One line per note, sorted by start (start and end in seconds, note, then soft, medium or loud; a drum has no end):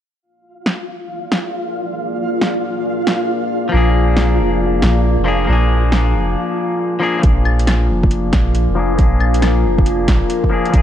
0.23 6.32 A#3 medium
0.23 6.36 F4 medium
0.23 6.32 F4 medium
0.23 6.32 G#4 medium
0.23 6.32 D5 medium
0.23 6.36 F5 medium
0.66 snare medium
1.32 snare loud
2.41 snare medium
3.07 snare loud
3.69 5.23 F3 medium
3.69 5.24 A#3 medium
3.73 4.40 A#1 medium
3.73 5.25 D4 medium
3.73 5.27 G#4 medium
4.17 snare loud
4.39 4.82 F1 medium
4.82 5.17 A#1 medium
4.82 snare loud
5.19 5.47 F1 medium
5.24 5.43 F3 medium
5.24 5.46 A#3 medium
5.24 5.47 D4 medium
5.24 5.47 G#4 medium
5.45 6.98 F3 medium
5.45 6.99 A#3 medium
5.49 6.16 A#1 loud
5.49 7.00 D4 medium
5.53 7.02 G#4 medium
5.92 snare loud
6.14 6.36 F1 medium
7.00 7.18 F3 medium
7.00 7.21 A#3 medium
7.00 7.22 D4 medium
7.00 7.23 G#4 medium
7.19 8.73 F3 medium
7.19 8.74 A#3 medium
7.23 7.91 A#1 medium
7.23 10.82 F4 medium
7.23 8.77 G#4 medium
7.23 10.82 A#4 medium
7.23 10.82 D5 medium
7.23 10.82 G#5 medium
7.23 kick loud
7.23 closed hi-hat medium
7.45 claves medium
7.59 closed hi-hat medium
7.67 snare loud
7.67 closed hi-hat medium
7.67 claves medium
7.89 8.32 F1 medium
8.03 kick loud
8.11 closed hi-hat medium
8.33 8.67 A#1 medium
8.33 kick loud
8.33 snare loud
8.33 closed hi-hat medium
8.55 closed hi-hat medium
8.69 8.98 F1 medium
8.75 8.94 F3 medium
8.75 8.96 A#3 medium
8.75 8.97 D4 medium
8.75 8.98 G#4 medium
8.95 10.48 F3 medium
8.95 10.49 A#3 medium
8.95 kick loud
8.95 closed hi-hat medium
8.99 9.66 A#1 loud
8.99 10.51 D4 medium
8.99 10.52 G#4 medium
9.20 claves medium
9.34 closed hi-hat medium
9.42 snare loud
9.42 closed hi-hat medium
9.42 claves soft
9.64 10.07 F1 medium
9.78 kick loud
9.86 closed hi-hat medium
10.08 10.21 A#1 medium
10.08 kick loud
10.08 snare loud
10.08 closed hi-hat medium
10.30 closed hi-hat medium
10.44 kick medium
10.50 10.69 F3 medium
10.50 10.71 A#3 medium
10.50 10.72 D4 medium
10.54 10.73 G#4 medium
10.66 closed hi-hat soft
10.70 10.82 F3 medium
10.70 10.82 A#3 medium
10.70 closed hi-hat medium
10.74 10.82 A#1 medium
10.74 10.82 D4 medium
10.74 kick loud
10.78 10.82 G#4 medium